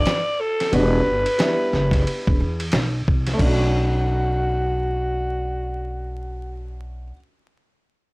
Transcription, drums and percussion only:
0.06 snare, hi-hat pedal, ride
0.60 snare, ride
0.73 ride
1.26 ride
1.39 snare, hi-hat pedal, ride
1.73 snare
1.91 kick, snare, ride
2.07 ride
2.27 kick
2.60 ride
2.72 snare, hi-hat pedal, ride
3.08 kick
3.27 snare, ride
3.39 kick, crash

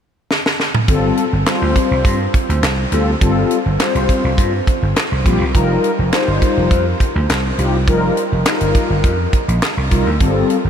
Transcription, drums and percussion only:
0.31 snare
0.46 snare
0.60 snare
0.75 mid tom
0.88 kick, closed hi-hat
1.17 closed hi-hat
1.46 snare, clap, closed hi-hat
1.76 kick, closed hi-hat
2.05 kick, closed hi-hat
2.34 kick, closed hi-hat
2.50 closed hi-hat
2.63 snare, clap, closed hi-hat
2.92 closed hi-hat
3.21 kick, closed hi-hat
3.51 closed hi-hat
3.80 snare, clap, closed hi-hat
3.95 closed hi-hat
4.09 kick, closed hi-hat
4.38 kick, closed hi-hat
4.67 kick, closed hi-hat
4.96 snare, clap, closed hi-hat
5.26 kick, closed hi-hat
5.55 kick, closed hi-hat
5.84 closed hi-hat
6.12 snare, clap, closed hi-hat
6.42 kick, closed hi-hat
6.71 kick, closed hi-hat
7.00 kick, closed hi-hat
7.29 snare, clap, closed hi-hat
7.59 closed hi-hat
7.88 kick, closed hi-hat
8.17 closed hi-hat
8.45 snare, clap, closed hi-hat
8.60 closed hi-hat
8.75 kick, closed hi-hat
9.04 kick, closed hi-hat
9.33 kick, closed hi-hat
9.49 closed hi-hat
9.62 snare, clap, closed hi-hat
9.91 kick, closed hi-hat
10.20 kick, closed hi-hat
10.50 closed hi-hat

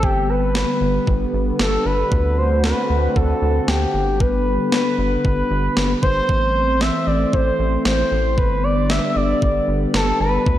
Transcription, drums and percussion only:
0.03 kick
0.55 snare
1.07 kick
1.59 snare
2.12 kick
2.64 snare
3.16 kick
3.68 snare
4.20 kick
4.72 snare
5.25 kick
5.77 snare
6.03 kick
6.29 kick
6.81 snare
7.33 kick
7.85 snare
8.38 kick
8.90 snare
9.42 kick
9.94 snare
10.46 kick

